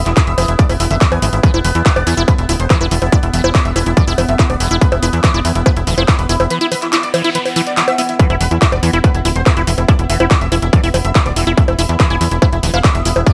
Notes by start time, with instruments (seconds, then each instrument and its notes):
Already playing: synth drone B3
0.06 analog synth bass E1, supersaw synth E4, clap, closed hi-hat
0.17 acid bass E4, supersaw synth E4, kick, clap, closed hi-hat
0.27 analog synth bass E1, supersaw synth E5, closed hi-hat
0.38 analog synth bass E1, acid bass E3, supersaw synth E4, open hi-hat, high bongo
0.48 analog synth bass E1, supersaw synth E4, closed hi-hat
0.59 acid bass E3, supersaw synth D5, kick, closed hi-hat
0.69 analog synth bass E1, supersaw synth E4, open hi-hat, high bongo
0.80 analog synth bass E1, acid bass E3, supersaw synth E4, open hi-hat
0.91 analog synth bass F1, acid bass D3, supersaw synth E5, closed hi-hat
1.01 acid bass F3, supersaw synth E4, kick, clap, closed hi-hat
1.12 analog synth bass E2, supersaw synth G#5, closed hi-hat, high bongo
1.22 analog synth bass G#1, acid bass F3, supersaw synth E4, open hi-hat
1.33 analog synth bass G#1, supersaw synth E4, closed hi-hat
1.43 acid bass E3, supersaw synth B4, kick, closed hi-hat
1.54 analog synth bass E1, acid bass E4, supersaw synth E4, closed hi-hat, high bongo
1.65 analog synth bass E1, acid bass E3, supersaw synth B4, open hi-hat
1.75 analog synth bass E2, supersaw synth E4, closed hi-hat
1.86 acid bass E4, supersaw synth E4, kick, clap, closed hi-hat
1.96 analog synth bass E1, supersaw synth D5, closed hi-hat, high bongo
2.07 analog synth bass E2, acid bass E3, supersaw synth E4, open hi-hat
2.17 analog synth bass E1, acid bass E4, supersaw synth E4, closed hi-hat
2.28 acid bass E3, supersaw synth B4, kick, closed hi-hat, high bongo
2.38 analog synth bass E1, supersaw synth E4, closed hi-hat
2.49 analog synth bass D1, acid bass E4, supersaw synth E4, open hi-hat
2.60 analog synth bass E1, supersaw synth C5, closed hi-hat
2.70 acid bass E3, supersaw synth E4, kick, clap, closed hi-hat, high bongo
2.81 analog synth bass E1, acid bass E4, supersaw synth B4, closed hi-hat
2.91 analog synth bass E1, acid bass E3, supersaw synth E4, open hi-hat
3.02 analog synth bass E1, supersaw synth E4, closed hi-hat, high bongo
3.12 acid bass E4, supersaw synth D5, kick, closed hi-hat
3.23 analog synth bass E1, supersaw synth E4, closed hi-hat
3.34 analog synth bass E1, acid bass E3, supersaw synth E5, open hi-hat
3.44 analog synth bass E1, acid bass E4, supersaw synth E4, closed hi-hat, high bongo
3.55 acid bass E3, supersaw synth E4, kick, clap, closed hi-hat
3.65 analog synth bass E1, supersaw synth E5, closed hi-hat
3.76 analog synth bass E1, supersaw synth E4, acid bass E4, open hi-hat, high bongo
3.86 analog synth bass E1, supersaw synth E4, closed hi-hat
3.97 acid bass E3, supersaw synth D5, kick, closed hi-hat
4.07 analog synth bass E1, supersaw synth E4, acid bass E4, open hi-hat
4.18 analog synth bass E1, acid bass E3, supersaw synth E4, open hi-hat, high bongo
4.29 analog synth bass F1, supersaw synth E5, closed hi-hat
4.39 supersaw synth E4, acid bass E4, kick, clap, closed hi-hat
4.50 analog synth bass D1, supersaw synth D5, closed hi-hat, high bongo
4.60 analog synth bass E1, acid bass E3, supersaw synth E4, open hi-hat
4.71 analog synth bass E1, acid bass E4, supersaw synth E4, closed hi-hat
4.81 acid bass E3, supersaw synth B4, kick, closed hi-hat
4.92 analog synth bass E1, supersaw synth E4, closed hi-hat, high bongo
5.03 analog synth bass E1, acid bass E4, supersaw synth B4, open hi-hat
5.13 analog synth bass E2, supersaw synth E4, closed hi-hat
5.24 acid bass E3, supersaw synth E4, kick, clap, closed hi-hat, high bongo
5.34 analog synth bass E1, acid bass E4, supersaw synth D5, closed hi-hat
5.45 analog synth bass E2, acid bass E3, supersaw synth E4, open hi-hat
5.55 analog synth bass E1, supersaw synth E4, closed hi-hat
5.66 acid bass E4, supersaw synth B4, kick, closed hi-hat, high bongo
5.76 analog synth bass E1, supersaw synth E4, closed hi-hat
5.87 analog synth bass D1, acid bass E3, supersaw synth E4, open hi-hat
5.98 analog synth bass E1, acid bass E4, supersaw synth C5, closed hi-hat, high bongo
6.08 acid bass E3, supersaw synth E4, kick, clap, closed hi-hat
6.19 analog synth bass E1, supersaw synth B4, closed hi-hat
6.29 analog synth bass E1, acid bass E4, supersaw synth E4, open hi-hat
6.40 analog synth bass E1, supersaw synth E4, closed hi-hat, high bongo
6.50 acid bass E3, supersaw synth B4, closed hi-hat, noise sweep
6.61 acid bass E4, supersaw synth E4, closed hi-hat
6.72 acid bass E3, supersaw synth B4, open hi-hat, high bongo
6.82 supersaw synth E4, clap, closed hi-hat
6.93 supersaw synth E4, acid bass E4, clap, closed hi-hat
7.03 supersaw synth D5, closed hi-hat
7.14 acid bass E3, supersaw synth E4, open hi-hat, high bongo
7.24 acid bass E4, supersaw synth E4, closed hi-hat
7.35 acid bass E3, supersaw synth B4, closed hi-hat
7.46 supersaw synth E4, open hi-hat, high bongo
7.56 acid bass E3, supersaw synth E4, open hi-hat
7.67 supersaw synth D5, closed hi-hat
7.77 acid bass E3, supersaw synth E4, clap, closed hi-hat
7.88 supersaw synth E5, closed hi-hat, high bongo
7.98 acid bass B3, supersaw synth E4, open hi-hat
8.09 supersaw synth E4, closed hi-hat
8.19 acid bass E3, synth drone B3, supersaw synth B4, kick, closed hi-hat
8.30 analog synth bass E1, acid bass E4, supersaw synth E4, closed hi-hat, high bongo
8.41 analog synth bass E1, acid bass E3, supersaw synth B4, open hi-hat
8.51 analog synth bass E2, supersaw synth E4, closed hi-hat
8.62 acid bass E4, supersaw synth E4, kick, clap, closed hi-hat
8.72 analog synth bass E1, supersaw synth D5, closed hi-hat, high bongo
8.83 analog synth bass E2, acid bass E3, supersaw synth E4, open hi-hat
8.93 analog synth bass E1, acid bass E4, supersaw synth E4, closed hi-hat
9.04 acid bass E3, supersaw synth B4, kick, closed hi-hat, high bongo
9.14 analog synth bass E1, supersaw synth E4, closed hi-hat
9.25 analog synth bass D1, acid bass E4, supersaw synth E4, open hi-hat
9.36 analog synth bass E1, supersaw synth C5, closed hi-hat
9.46 acid bass E3, supersaw synth E4, kick, clap, closed hi-hat, high bongo
9.57 analog synth bass E1, acid bass E4, supersaw synth B4, closed hi-hat
9.67 analog synth bass E1, acid bass E3, supersaw synth E4, open hi-hat
9.78 analog synth bass E1, supersaw synth E4, closed hi-hat, high bongo
9.88 acid bass E4, supersaw synth D5, kick, closed hi-hat
9.99 analog synth bass E1, supersaw synth E4, closed hi-hat
10.10 analog synth bass E1, acid bass E3, supersaw synth E5, open hi-hat
10.20 analog synth bass E1, supersaw synth E4, acid bass E4, closed hi-hat, high bongo
10.31 acid bass E3, supersaw synth E4, kick, clap, closed hi-hat
10.41 analog synth bass E1, supersaw synth E5, closed hi-hat
10.52 analog synth bass E1, supersaw synth E4, acid bass E4, open hi-hat, high bongo
10.62 analog synth bass E1, supersaw synth E4, closed hi-hat
10.73 acid bass E3, supersaw synth D5, kick, closed hi-hat
10.84 analog synth bass E1, supersaw synth E4, acid bass E4, open hi-hat
10.94 analog synth bass E1, acid bass E3, supersaw synth E4, open hi-hat, high bongo
11.05 analog synth bass F1, supersaw synth E5, closed hi-hat
11.15 supersaw synth E4, acid bass E4, kick, clap, closed hi-hat
11.26 analog synth bass D1, supersaw synth D5, closed hi-hat, high bongo
11.36 analog synth bass E1, acid bass E3, supersaw synth E4, open hi-hat
11.47 analog synth bass E1, supersaw synth E4, acid bass E4, closed hi-hat
11.57 acid bass E3, supersaw synth E5, kick, closed hi-hat
11.68 analog synth bass E1, supersaw synth E4, closed hi-hat, high bongo
11.79 analog synth bass E1, acid bass E4, supersaw synth E5, open hi-hat
11.89 analog synth bass E2, supersaw synth E4, closed hi-hat
12.00 acid bass E3, supersaw synth E4, kick, clap, closed hi-hat, high bongo
12.10 analog synth bass E1, acid bass E4, supersaw synth G#5, closed hi-hat
12.21 analog synth bass E2, acid bass E3, supersaw synth E4, open hi-hat
12.31 analog synth bass E1, supersaw synth E4, closed hi-hat
12.42 acid bass E4, supersaw synth E5, kick, closed hi-hat, high bongo
12.53 analog synth bass E1, supersaw synth E4, closed hi-hat
12.63 analog synth bass D1, acid bass E3, supersaw synth E4, open hi-hat
12.74 analog synth bass E1, acid bass E4, supersaw synth F5, closed hi-hat, high bongo
12.84 acid bass E3, supersaw synth E4, kick, clap, closed hi-hat
12.95 analog synth bass E1, supersaw synth E5, closed hi-hat
13.05 analog synth bass E1, acid bass E4, supersaw synth E4, open hi-hat
13.16 analog synth bass E1, supersaw synth E4, closed hi-hat, high bongo
13.26 acid bass E3, supersaw synth D5, kick, closed hi-hat